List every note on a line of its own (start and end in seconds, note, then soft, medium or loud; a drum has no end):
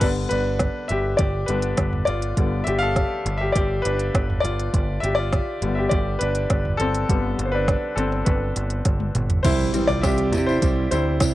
0.00 0.26 G1 medium
0.00 1.47 D3 medium
0.00 1.47 G3 soft
0.00 1.48 B3 medium
0.00 0.10 D4 medium
0.00 0.07 B4 medium
0.00 kick medium
0.00 closed hi-hat medium
0.00 crash medium
0.29 0.67 G1 medium
0.29 0.87 D4 medium
0.29 0.91 B4 medium
0.29 closed hi-hat medium
0.59 kick medium
0.59 snare medium
0.59 closed hi-hat medium
0.88 1.14 G1 medium
0.88 1.18 G4 medium
0.88 1.20 E5 medium
0.88 closed hi-hat medium
1.17 1.44 G1 medium
1.17 1.47 G4 medium
1.17 1.49 D5 medium
1.17 kick medium
1.17 closed hi-hat medium
1.46 1.73 G1 medium
1.46 1.75 D3 soft
1.46 1.75 G3 soft
1.46 1.76 B3 medium
1.46 2.04 D4 medium
1.46 2.09 B4 medium
1.46 closed hi-hat medium
1.62 closed hi-hat soft
1.77 2.02 G1 medium
1.77 kick medium
1.77 snare medium
1.77 closed hi-hat medium
1.93 floor tom medium
2.05 2.32 G1 medium
2.05 2.63 F4 medium
2.05 2.67 D5 medium
2.05 closed hi-hat medium
2.22 closed hi-hat soft
2.37 2.61 G1 medium
2.37 4.69 D3 soft
2.37 4.70 G3 soft
2.37 4.70 B3 medium
2.37 kick medium
2.37 closed hi-hat medium
2.64 3.03 G1 medium
2.64 2.81 G4 medium
2.64 2.81 E5 medium
2.64 closed hi-hat medium
2.79 3.37 A4 medium
2.79 3.41 F5 loud
2.96 kick medium
2.96 snare medium
2.96 closed hi-hat medium
3.26 3.50 G1 medium
3.26 closed hi-hat medium
3.38 3.54 G4 medium
3.38 3.54 E5 medium
3.52 3.80 G1 medium
3.52 3.83 G4 medium
3.52 3.84 D5 medium
3.52 kick medium
3.52 closed hi-hat medium
3.82 4.09 G1 medium
3.82 4.44 B4 medium
3.82 closed hi-hat medium
3.86 4.41 D4 medium
3.99 closed hi-hat soft
4.14 4.39 G1 medium
4.14 kick medium
4.14 snare loud
4.14 closed hi-hat medium
4.30 floor tom medium
4.40 4.68 G1 medium
4.40 4.99 F4 medium
4.40 5.03 D5 medium
4.45 closed hi-hat medium
4.60 closed hi-hat soft
4.73 4.98 G1 medium
4.73 kick medium
4.73 closed hi-hat medium
5.00 5.39 G1 medium
5.00 5.09 G4 medium
5.00 5.05 E5 medium
5.00 closed hi-hat medium
5.15 5.77 D5 loud
5.19 5.73 F4 medium
5.33 kick medium
5.33 snare medium
5.33 closed hi-hat medium
5.62 5.86 G1 medium
5.62 6.01 D3 soft
5.62 6.02 G3 soft
5.62 6.02 B3 medium
5.62 closed hi-hat medium
5.75 5.91 G4 medium
5.75 5.91 E5 medium
5.89 6.16 G1 medium
5.89 6.20 G4 medium
5.89 6.21 D5 medium
5.89 kick medium
5.89 closed hi-hat medium
6.19 6.45 G1 medium
6.19 6.77 D4 medium
6.19 6.81 B4 medium
6.19 closed hi-hat medium
6.35 closed hi-hat soft
6.50 6.74 G1 medium
6.50 kick medium
6.50 snare medium
6.50 closed hi-hat medium
6.65 floor tom medium
6.77 7.04 G1 medium
6.77 7.43 C4 medium
6.77 7.47 A4 medium
6.77 closed hi-hat medium
6.95 closed hi-hat soft
7.09 7.34 G1 medium
7.09 9.41 D3 soft
7.09 9.41 G3 soft
7.09 9.41 B3 medium
7.09 kick medium
7.09 closed hi-hat medium
7.39 7.75 G1 medium
7.39 closed hi-hat medium
7.45 7.53 C5 medium
7.52 7.95 D4 medium
7.52 7.98 B4 medium
7.68 kick medium
7.68 snare loud
7.68 closed hi-hat medium
7.96 8.21 G1 medium
7.96 8.25 C4 medium
7.96 8.27 A4 medium
7.96 closed hi-hat medium
8.12 snare soft
8.25 8.51 G1 loud
8.25 9.12 D4 soft
8.25 9.10 B4 medium
8.25 kick medium
8.25 closed hi-hat medium
8.56 8.81 G1 medium
8.56 closed hi-hat medium
8.70 closed hi-hat soft
8.85 9.10 G1 medium
8.85 kick loud
8.85 snare medium
8.85 closed hi-hat medium
9.00 high tom medium
9.15 9.40 G1 medium
9.15 closed hi-hat medium
9.15 mid tom medium
9.30 closed hi-hat soft
9.30 floor tom medium
9.43 9.69 C2 loud
9.43 9.74 C3 medium
9.43 9.74 G3 medium
9.43 9.74 C4 medium
9.43 9.74 E4 medium
9.43 9.86 E4 medium
9.43 9.73 G4 medium
9.43 9.89 C5 medium
9.43 kick loud
9.43 closed hi-hat medium
9.43 crash medium
9.43 tambourine soft
9.43 impact medium
9.60 tambourine soft
9.73 10.13 E3 medium
9.73 10.13 G3 soft
9.73 10.13 C4 medium
9.73 10.03 C4 soft
9.73 10.03 E4 soft
9.73 10.03 G4 medium
9.73 closed hi-hat medium
9.73 tambourine soft
9.87 10.01 C2 medium
9.87 10.03 F4 medium
9.87 10.02 D5 loud
9.87 tambourine soft
10.01 10.34 C2 loud
10.01 10.33 C3 medium
10.01 10.33 G3 medium
10.01 10.33 C4 medium
10.01 10.32 E4 medium
10.01 10.45 G4 medium
10.01 10.31 G4 medium
10.01 10.48 E5 medium
10.01 kick loud
10.01 snare loud
10.01 closed hi-hat medium
10.01 tambourine medium
10.18 closed hi-hat medium
10.32 10.57 C3 loud
10.32 10.61 C4 soft
10.32 10.62 E4 medium
10.32 10.62 G4 medium
10.32 closed hi-hat medium
10.32 floor tom medium
10.32 tambourine medium
10.46 10.89 E4 medium
10.46 10.90 C5 medium
10.46 tambourine soft
10.62 10.87 C2 medium
10.62 10.92 G3 medium
10.62 10.92 C4 medium
10.62 10.91 E4 medium
10.62 10.90 G4 medium
10.62 kick loud
10.62 closed hi-hat medium
10.62 tambourine medium
10.91 11.21 D2 medium
10.91 11.20 C4 soft
10.91 11.20 E4 medium
10.91 11.34 E4 medium
10.91 11.21 G4 medium
10.91 11.34 C5 medium
10.91 closed hi-hat medium
10.91 tambourine medium
11.20 11.34 C2 medium
11.20 11.34 C3 medium
11.20 11.34 G3 medium
11.20 11.34 C4 medium
11.20 11.34 E4 medium
11.20 11.34 G4 medium
11.20 kick loud
11.20 snare loud
11.20 closed hi-hat medium
11.20 tambourine loud